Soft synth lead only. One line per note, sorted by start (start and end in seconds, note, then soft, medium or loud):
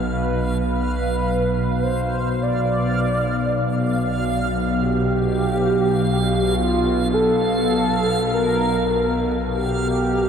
0.07 0.61 B4 medium
0.67 1.84 B4 medium
1.83 2.44 C5 medium
2.42 4.19 D5 loud
4.79 6.51 G4 loud
6.54 7.15 F4 medium
7.13 8.32 A4 loud
8.33 9.18 A#4 loud
9.51 10.29 G4 loud